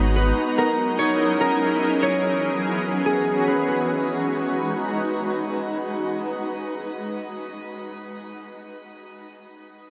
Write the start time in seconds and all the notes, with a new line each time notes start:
Already playing: G#1 G#3 B3 D#4 F#4 G#4 C#5 A#5
0.16 B4
0.37 F#3 C#4 D#4 E4 G#4 A#4
0.58 A#4
0.99 C#5
1.40 A#4
2.02 E3 B3 F#4 G#4 C#5
3.06 G#4
3.47 B4
3.68 G#3 D#4 F#4 B4 A#5